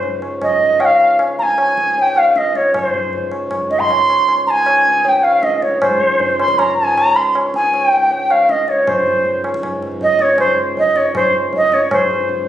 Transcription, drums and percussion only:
0.03 tabla tin, tabla ge
0.22 tabla na
0.42 tabla na, tabla ge
0.61 tabla ge
0.80 tabla na
1.00 tabla na
1.19 tabla na
1.39 tabla te
1.58 tabla na
1.78 tabla ke
1.88 tabla te
1.98 tabla tin
2.16 tabla na
2.36 tabla te
2.55 tabla te
2.74 tabla na, tabla ge
2.94 tabla ge
3.13 tabla tin, tabla ge
3.32 tabla na
3.51 tabla na, tabla ge
3.71 tabla te
3.81 tabla ge
3.90 tabla na
4.10 tabla na
4.28 tabla na
4.47 tabla te
4.66 tabla na
4.85 tabla te
5.05 tabla tin
5.24 tabla na
5.43 tabla te
5.62 tabla te
5.82 tabla na, tabla ge
6.01 tabla ge
6.20 tabla tin, tabla ge
6.39 tabla na
6.48 tabla ke
6.59 tabla na, tabla ge
6.78 tabla ge
6.98 tabla na
7.16 tabla na
7.35 tabla na
7.54 tabla te
7.74 tabla na
7.93 tabla te
8.11 tabla tin
8.30 tabla na
8.49 tabla te
8.68 tabla te
8.87 tabla na, tabla ge
9.07 tabla ge
9.25 tabla tin, tabla ge
9.44 tabla na
9.54 tabla ke
9.63 tabla na, tabla ge
9.82 tabla te
9.92 tabla ge
10.01 tabla tin, tabla ge
10.19 tabla te
10.38 tabla na, tabla ge
10.77 tabla tin, tabla ge
10.96 tabla te
11.15 tabla na, tabla ge
11.53 tabla tin, tabla ge
11.72 tabla te
11.91 tabla na, tabla ge
12.11 tabla ge
12.29 tabla tin, tabla ge

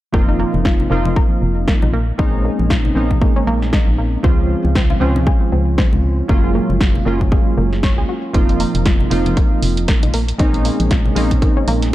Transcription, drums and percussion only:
0.14 kick
0.54 high conga
0.65 kick, snare
0.80 low conga
1.05 high conga, low conga
1.16 kick
1.68 kick, snare
1.82 low conga
2.19 kick
2.59 high conga
2.70 kick, snare
2.85 low conga
3.11 kick, high conga, low conga
3.22 kick
3.62 snare
3.73 kick, snare
4.24 kick
4.65 high conga
4.75 kick, snare
4.90 low conga
5.16 high conga, low conga
5.27 kick
5.78 kick, snare
5.93 low conga
6.29 kick
6.70 high conga
6.81 kick, snare
6.95 low conga
7.21 kick, high conga, low conga
7.32 kick
7.73 snare
7.83 kick, snare
8.34 kick, closed hi-hat
8.49 closed hi-hat
8.60 open hi-hat
8.75 closed hi-hat, high conga
8.86 kick, snare, closed hi-hat
9.00 low conga
9.11 open hi-hat
9.26 closed hi-hat, high conga, low conga
9.37 kick, closed hi-hat
9.63 open hi-hat
9.77 closed hi-hat
9.88 kick, snare, closed hi-hat
10.03 closed hi-hat, low conga
10.14 open hi-hat
10.28 closed hi-hat
10.39 kick, closed hi-hat
10.54 closed hi-hat
10.65 open hi-hat
10.80 closed hi-hat, high conga
10.91 kick, snare, closed hi-hat
11.06 low conga
11.16 open hi-hat
11.31 kick, closed hi-hat, high conga, low conga
11.42 kick, closed hi-hat
11.68 open hi-hat
11.82 snare, closed hi-hat

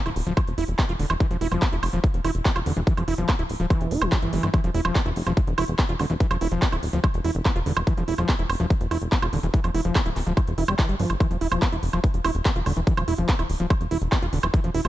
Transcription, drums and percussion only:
0.06 closed hi-hat, high woodblock
0.16 open hi-hat
0.27 closed hi-hat
0.37 kick, closed hi-hat, high woodblock
0.47 closed hi-hat
0.58 open hi-hat
0.68 closed hi-hat
0.79 kick, clap, closed hi-hat, high woodblock
0.89 closed hi-hat
1.00 open hi-hat
1.10 closed hi-hat, high woodblock
1.20 kick, closed hi-hat
1.31 closed hi-hat
1.41 open hi-hat
1.52 closed hi-hat, high woodblock
1.62 kick, clap, closed hi-hat
1.72 closed hi-hat
1.83 open hi-hat, high woodblock
1.93 closed hi-hat
2.04 kick, closed hi-hat
2.14 closed hi-hat
2.25 open hi-hat, high woodblock
2.35 closed hi-hat
2.45 kick, clap, closed hi-hat
2.56 closed hi-hat, high woodblock
2.66 open hi-hat
2.77 closed hi-hat
2.87 kick, closed hi-hat
2.97 closed hi-hat, high woodblock
3.08 open hi-hat
3.18 closed hi-hat
3.29 kick, clap, closed hi-hat, high woodblock
3.39 closed hi-hat
3.49 open hi-hat
3.60 closed hi-hat
3.70 kick, closed hi-hat, high woodblock
3.81 closed hi-hat
3.91 open hi-hat
4.02 closed hi-hat, high woodblock
4.12 kick, clap, closed hi-hat
4.22 closed hi-hat
4.33 open hi-hat
4.43 closed hi-hat, high woodblock
4.54 kick, closed hi-hat, high woodblock
4.64 closed hi-hat
4.75 open hi-hat
4.85 closed hi-hat, high woodblock
4.95 kick, clap, closed hi-hat
5.06 closed hi-hat
5.16 open hi-hat
5.27 closed hi-hat, high woodblock
5.37 kick, closed hi-hat
5.47 closed hi-hat
5.58 open hi-hat, high woodblock
5.68 closed hi-hat
5.79 kick, clap, closed hi-hat
5.89 closed hi-hat
6.00 open hi-hat, high woodblock
6.10 closed hi-hat
6.20 kick, closed hi-hat
6.31 closed hi-hat, high woodblock
6.41 open hi-hat
6.52 closed hi-hat
6.62 kick, clap, closed hi-hat
6.72 closed hi-hat, high woodblock
6.83 open hi-hat
6.93 closed hi-hat
7.04 kick, closed hi-hat, high woodblock
7.14 closed hi-hat
7.25 open hi-hat
7.35 closed hi-hat
7.45 kick, clap, closed hi-hat, high woodblock
7.56 closed hi-hat
7.66 open hi-hat
7.77 closed hi-hat, high woodblock
7.87 kick, closed hi-hat
7.97 closed hi-hat
8.08 open hi-hat
8.18 closed hi-hat, high woodblock
8.29 kick, clap, closed hi-hat
8.39 closed hi-hat
8.50 open hi-hat, high woodblock
8.60 closed hi-hat
8.70 kick, closed hi-hat
8.81 closed hi-hat
8.91 open hi-hat, high woodblock
9.02 closed hi-hat
9.12 kick, clap, closed hi-hat
9.22 closed hi-hat, high woodblock
9.33 open hi-hat
9.43 closed hi-hat
9.54 kick, closed hi-hat
9.64 closed hi-hat, high woodblock
9.75 open hi-hat
9.85 closed hi-hat
9.95 kick, clap, closed hi-hat, high woodblock
10.06 closed hi-hat
10.16 clap, open hi-hat
10.27 closed hi-hat
10.37 kick, closed hi-hat, high woodblock
10.47 closed hi-hat
10.58 open hi-hat
10.68 closed hi-hat, high woodblock
10.79 kick, clap, closed hi-hat
10.89 closed hi-hat
11.00 open hi-hat
11.10 closed hi-hat, high woodblock
11.20 kick, closed hi-hat, high woodblock
11.31 closed hi-hat
11.41 open hi-hat
11.52 closed hi-hat, high woodblock
11.62 kick, clap, closed hi-hat
11.72 closed hi-hat
11.83 open hi-hat
11.93 closed hi-hat, high woodblock
12.04 kick, closed hi-hat
12.14 closed hi-hat
12.25 open hi-hat, high woodblock
12.35 closed hi-hat
12.45 kick, clap, closed hi-hat
12.56 closed hi-hat
12.66 open hi-hat, high woodblock
12.77 closed hi-hat
12.87 kick, closed hi-hat
12.97 closed hi-hat, high woodblock
13.08 open hi-hat
13.18 closed hi-hat
13.29 kick, clap, closed hi-hat
13.39 closed hi-hat, high woodblock
13.50 open hi-hat
13.60 closed hi-hat
13.70 kick, closed hi-hat, high woodblock
13.81 closed hi-hat
13.91 open hi-hat
14.02 closed hi-hat
14.12 kick, clap, closed hi-hat, high woodblock
14.22 closed hi-hat
14.33 open hi-hat
14.43 closed hi-hat, high woodblock
14.54 kick, closed hi-hat
14.64 closed hi-hat
14.74 open hi-hat
14.85 closed hi-hat, high woodblock

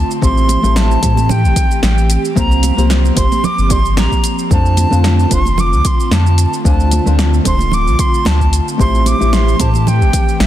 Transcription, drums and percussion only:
0.11 shaker
0.22 kick, shaker
0.38 shaker
0.49 closed hi-hat, high conga, shaker
0.64 shaker
0.76 snare, shaker
0.91 shaker
1.03 kick, closed hi-hat, shaker
1.17 high conga, shaker
1.29 low conga, shaker
1.45 shaker
1.56 kick, closed hi-hat, shaker
1.71 shaker
1.83 snare, high conga, shaker
1.98 shaker
2.10 closed hi-hat, shaker
2.25 shaker
2.36 kick, shaker
2.52 shaker
2.63 closed hi-hat, high conga, shaker
2.78 shaker
2.90 snare, shaker
3.05 shaker
3.17 kick, closed hi-hat, shaker
3.32 high conga, shaker
3.44 low conga, shaker
3.58 shaker
3.70 kick, closed hi-hat, shaker
3.85 shaker
3.97 snare, high conga, shaker
4.12 kick, shaker
4.24 closed hi-hat, shaker
4.39 shaker
4.51 kick, shaker
4.66 shaker
4.77 closed hi-hat, high conga, shaker
4.93 shaker
5.04 snare, shaker
5.19 shaker
5.31 kick, closed hi-hat, shaker
5.45 high conga, shaker
5.58 low conga, shaker
5.73 shaker
5.85 kick, closed hi-hat, shaker
6.00 shaker
6.11 snare, high conga, shaker
6.27 shaker
6.38 closed hi-hat, shaker
6.54 shaker
6.65 kick, shaker
6.80 shaker
6.91 closed hi-hat, high conga, shaker
7.07 shaker
7.19 snare, shaker
7.34 shaker
7.45 kick, closed hi-hat, shaker
7.59 high conga, shaker
7.71 low conga, shaker
7.87 shaker
7.99 kick, closed hi-hat, shaker
8.14 shaker
8.25 snare, high conga, shaker
8.40 kick, shaker
8.53 closed hi-hat, shaker
8.68 shaker
8.79 kick, shaker
8.95 shaker
9.06 closed hi-hat, high conga, shaker
9.22 shaker
9.33 snare, shaker
9.48 shaker
9.60 kick, closed hi-hat, shaker
9.74 high conga, shaker
9.87 low conga, shaker
10.02 shaker
10.13 kick, closed hi-hat, shaker
10.29 shaker
10.40 snare, high conga, shaker

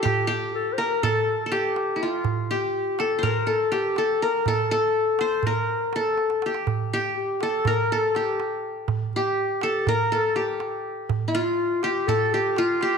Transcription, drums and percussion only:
0.05 darbuka dum
0.79 darbuka tek
0.91 darbuka ka
1.03 darbuka dum
1.52 darbuka tek
1.76 darbuka tek
2.24 darbuka dum
2.99 darbuka tek
3.12 darbuka ka
3.23 darbuka dum
3.72 darbuka tek
3.96 darbuka tek
4.46 darbuka dum
4.71 darbuka ka
4.95 darbuka ka
5.19 darbuka tek
5.31 darbuka ka
5.43 darbuka dum
5.68 darbuka ka
5.81 darbuka ka
5.93 darbuka tek
6.18 darbuka tek
6.30 darbuka ka
6.42 darbuka tek
6.54 darbuka ka
6.67 darbuka dum
6.91 darbuka ka
7.41 darbuka tek
7.53 darbuka ka
7.65 darbuka dum
8.15 darbuka tek
8.40 darbuka tek
8.88 darbuka dum
9.13 darbuka ka
9.61 darbuka tek
9.74 darbuka ka
9.87 darbuka dum
10.36 darbuka tek
10.60 darbuka tek
11.09 darbuka dum
11.35 darbuka ka
11.83 darbuka tek
11.96 darbuka ka
12.08 darbuka dum
12.56 darbuka tek
12.81 darbuka tek

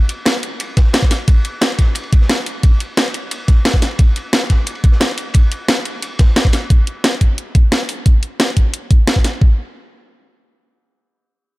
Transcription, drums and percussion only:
0.09 closed hi-hat, ride
0.25 snare, closed hi-hat, ride
0.43 closed hi-hat, ride
0.60 closed hi-hat, ride
0.77 kick, snare, closed hi-hat, ride
0.93 snare, closed hi-hat, ride
1.02 kick, snare
1.11 snare, open hi-hat, ride
1.28 kick, closed hi-hat, ride
1.45 closed hi-hat, ride
1.61 snare, closed hi-hat, ride
1.79 kick, snare, closed hi-hat, ride
1.95 closed hi-hat, ride
2.03 ride
2.13 kick, closed hi-hat, ride
2.21 snare
2.30 snare, closed hi-hat, ride
2.46 open hi-hat, ride
2.63 kick, closed hi-hat, ride
2.80 closed hi-hat, ride
2.97 snare, closed hi-hat, ride
3.14 closed hi-hat, ride
3.31 closed hi-hat, ride
3.48 kick, snare, closed hi-hat, ride
3.65 snare, closed hi-hat, ride
3.74 kick, snare
3.82 snare, open hi-hat, ride
3.91 ride
3.99 kick, closed hi-hat, ride
4.16 closed hi-hat, ride
4.33 snare, closed hi-hat, ride
4.50 kick, snare, closed hi-hat, ride
4.67 closed hi-hat, ride
4.75 ride
4.84 kick, closed hi-hat, ride
4.92 snare
5.00 snare, closed hi-hat, ride
5.18 open hi-hat, ride
5.34 kick, closed hi-hat, ride
5.52 closed hi-hat, ride
5.68 snare, closed hi-hat, ride
5.85 closed hi-hat, ride
6.02 closed hi-hat, ride
6.19 kick, snare, closed hi-hat, ride
6.36 snare, closed hi-hat, ride
6.45 kick, snare
6.53 snare, open hi-hat, ride
6.70 kick, closed hi-hat
6.87 closed hi-hat
7.04 snare, closed hi-hat
7.21 kick, closed hi-hat
7.38 closed hi-hat
7.55 kick, closed hi-hat
7.72 snare, closed hi-hat
7.89 open hi-hat
8.06 kick, closed hi-hat
8.23 closed hi-hat
8.40 snare, closed hi-hat
8.57 kick, closed hi-hat
8.74 closed hi-hat
8.91 kick, closed hi-hat
9.07 snare, closed hi-hat
9.16 kick
9.24 snare, open hi-hat
9.41 kick

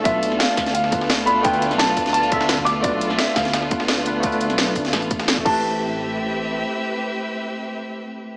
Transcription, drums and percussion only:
0.05 kick, closed hi-hat
0.23 closed hi-hat
0.32 snare
0.40 snare, closed hi-hat
0.57 kick, snare, closed hi-hat
0.66 snare, closed hi-hat
0.75 closed hi-hat
0.84 snare
0.92 kick, closed hi-hat
1.01 snare
1.10 snare, closed hi-hat
1.19 closed hi-hat
1.27 closed hi-hat
1.44 kick, closed hi-hat
1.53 closed hi-hat
1.62 closed hi-hat
1.71 snare, closed hi-hat
1.79 snare, closed hi-hat
1.97 kick, closed hi-hat, open hi-hat
2.06 snare, closed hi-hat
2.14 closed hi-hat
2.23 closed hi-hat
2.32 kick, closed hi-hat
2.41 snare
2.49 snare, closed hi-hat
2.58 kick
2.66 snare, closed hi-hat
2.84 kick, closed hi-hat
3.01 closed hi-hat
3.10 snare
3.19 snare, closed hi-hat
3.36 kick, snare, closed hi-hat
3.45 snare, closed hi-hat
3.53 snare, closed hi-hat
3.62 snare
3.71 kick, closed hi-hat
3.80 snare
3.88 snare, closed hi-hat
3.97 closed hi-hat
4.06 closed hi-hat
4.23 kick, closed hi-hat
4.32 closed hi-hat
4.41 closed hi-hat
4.50 snare, closed hi-hat
4.58 snare, closed hi-hat
4.75 kick, closed hi-hat, open hi-hat
4.85 snare, closed hi-hat
4.93 snare, closed hi-hat
5.02 closed hi-hat
5.11 kick, closed hi-hat
5.20 snare, closed hi-hat
5.28 snare, closed hi-hat
5.37 kick
5.46 kick, crash

